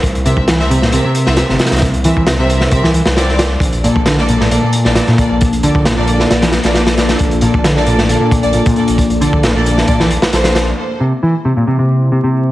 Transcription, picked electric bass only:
X:1
M:4/4
L:1/16
Q:1/4=134
K:Cmix
V:1 name="Picked electric bass" clef=bass
z2 C, z E, z C, B,, C, C,3 C, C,3- | C, z E,2 C, C,3 C, E, E, z4 z | z2 B,, z D, z B,, A,, B,, B,,3 B,, B,,3- | B,, z D,2 B,, B,,3 B,, E, z6 |
z2 B,, z D, z B,, A,, B,, B,,3 B,, B,,3- | B,, z D,2 B,, B,,3 B,, E, z6 | z2 C, z E, z C, B,, C, C,3 C, C,3 |]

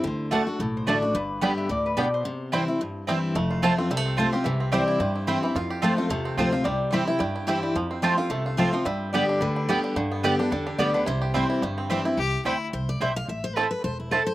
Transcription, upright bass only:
X:1
M:4/4
L:1/8
Q:"Swing" 1/4=218
K:C
V:1 name="Upright bass" clef=bass
D,,4 B,,,2 A,,,2 | G,,,4 D,,4 | z8 | F,,,4 C,,4 |
C,,4 G,,4 | F,,4 E,,2 D,,2 | C,,4 G,,4 | F,,4 C,,4 |
G,,4 D,,4 | G,,4 E,,2 D,,2 | C,,4 G,,,4 | C,,2 D,,2 C,,2 B,,,2 |
A,,,4 E,,,4 |]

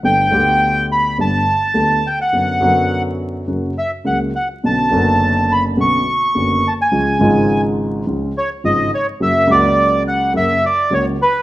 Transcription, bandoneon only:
X:1
M:4/4
L:1/16
Q:1/4=105
K:Bm
V:1 name="Bandoneon"
g6 b2 a6 g f- | f4- f z4 z e2 f2 f2 | a6 b2 c'6 a ^g- | ^g4- g z4 z c2 ^d2 c2 |
e2 d4 f2 e2 d2 c2 B2 |]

